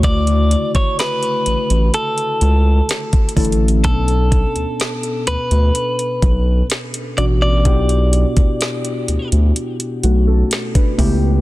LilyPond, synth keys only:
\new Staff \with { instrumentName = "Synth keys" } { \time 4/4 \key e \dorian \tempo 4 = 63 << { r1 | r1 | r2 r8 <a fis'>16 <cis' a'>8 <d' b'>8 r16 | } \\ { <cis d a e' fis'>4 r2 r8 <d a cis' e' a'>8 | <b, cis' d'>4. r2 <b, b cis' d' fis'>8 | <b, b d' e' fis' g'>4. r2 <cis a b e' g'>8 | } >> }